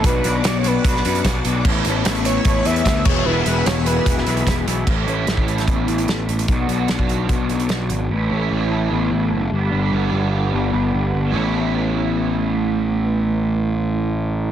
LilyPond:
<<
  \new Staff \with { instrumentName = "String machine" } { \time 4/4 \key a \major \tempo 4 = 148 << { <d'' fis'' d'''>1 | <e'' a'' cis'''>2.~ <e'' a'' cis'''>8 <fis'' gis'' e'''>8~ | <fis'' gis'' e'''>1 | r1 |
r1 | r1 | r1 | r1 |
r1 | } \\ { b'1 | b'1~ | b'1 | r1 |
r1 | r1 | r1 | r1 |
r1 | } >> }
  \new Staff \with { instrumentName = "Analog synth lead" } { \time 4/4 \key a \major b'4 d''16 cis''16 b'2 r8 | r4. cis''4 e''8 e''8 cis''8 | b'8 b'8 cis''8 b'2 r8 | r1 |
r1 | r1 | r1 | r1 |
r1 | }
  \new Staff \with { instrumentName = "Clean electric guitar" } { \time 4/4 \key a \major <b, fis b d' fis' d''>8 <b, fis b d' fis' d''>8 <b, fis b d' fis' d''>8 <b, fis b d' fis' d''>8 <b, fis b d' fis' d''>8 <b, fis b d' fis' d''>8 <b, fis b d' fis' d''>8 <b, fis b d' fis' d''>8 | <a b e' a' cis''>8 <a b e' a' cis''>8 <a b e' a' cis''>8 <a b e' a' cis''>8 <a b e' a' cis''>8 <a b e' a' cis''>8 <a b e' a' cis''>8 <e fis b e' gis' e''>8 | <e fis b e' gis' e''>8 <e fis b e' gis' e''>8 <e fis b e' gis' e''>8 <e fis b e' gis' e''>8 <e fis b e' gis' e''>8 <e fis b e' gis' e''>8 <e fis b e' gis' e''>8 <e fis b e' gis' e''>8 | a8 cis''8 e'8 a'8 b8 e'8 a'8 b8 |
b,8 d''8 d'8 fis'8 b8 d'8 fis'8 b8 | a8 cis''8 e'8 a'8 b8 e'8 a'8 g8 | g8 b'8 d'8 g'8 b8 d'8 g'8 b8 | <a b e' a' cis''>1~ |
<a b e' a' cis''>1 | }
  \new Staff \with { instrumentName = "Overdriven electric guitar" } { \time 4/4 \key a \major <b, fis b d' fis'>8 <b, fis b d' fis'>8 <b, fis b d' fis'>8 <b, fis b d' fis'>8 <b, fis b d' fis'>8 <b, fis b d' fis'>8 <b, fis b d' fis'>8 <b, fis b d' fis'>8 | <a, e a cis' e'>8 <a, e a cis' e'>8 <a, e a cis' e'>8 <a, e a cis' e'>8 <a, e a cis' e'>8 <a, e a cis' e'>8 <a, e a cis' e'>8 <e gis b e'>8 | <e gis b e'>8 <e gis b e'>8 <e gis b e'>8 <e gis b e'>8 <e gis b e'>8 <e gis b e'>8 <e gis b e'>8 <e gis b e'>8 | <a, e a cis' e'>1 |
<b, fis b d' fis'>1 | <a, e a cis' e'>2.~ <a, e a cis' e'>8 <g, d g b d'>8~ | <g, d g b d'>1 | <a, e a cis' e'>1~ |
<a, e a cis' e'>1 | }
  \new Staff \with { instrumentName = "Picked electric bass" } { \clef bass \time 4/4 \key a \major b,,8 b,,8 b,,4 b,,8 fis,8 b,,8 b,,8 | a,,8 a,,8 a,,4 a,,8 e,8 d,8 e,,8 | e,,8 e,,8 e,,4 e,,8 b,,8 e,,8 b,,8 | a,,8 a,,8 a,,4 a,,8 a,,8 a,,8 a,,8 |
b,,8 b,,8 b,,4 b,,8 b,,8 b,,8 gis,,8 | a,,8 a,,8 a,,4 a,,8 a,,8 fis,,8 g,,8 | g,,8 g,,8 g,,4 g,,8 g,,8 g,,8 g,,8 | a,,1~ |
a,,1 | }
  \new DrumStaff \with { instrumentName = "Drums" } \drummode { \time 4/4 <hh bd>8 hh8 <hh sn>8 hh8 <hh bd>16 sn16 hh16 hh16 <hh bd sn>8 hh8 | <cymc bd>8 hh8 <hh sn>16 hh16 hh8 <hh bd>8 hh16 hh16 <hh bd sn>8 <cymc bd>8 | r8 hh8 <hh sn>8 hh8 <hh bd>16 sn16 hh16 hh16 <hh bd sn>8 hh8 | <cymc bd>8 hh8 <hh sn>16 bd16 hh16 <hh sn>16 <hh bd>8 hh16 hh16 <hh sn>8 hh16 hh16 |
<hh bd>8 hh8 <hh sn>16 bd16 hh8 <hh bd>8 hh16 hh16 <hh sn>8 hh8 | r4 r4 r4 r4 | r4 r4 r4 r4 | r4 r4 r4 r4 |
r4 r4 r4 r4 | }
>>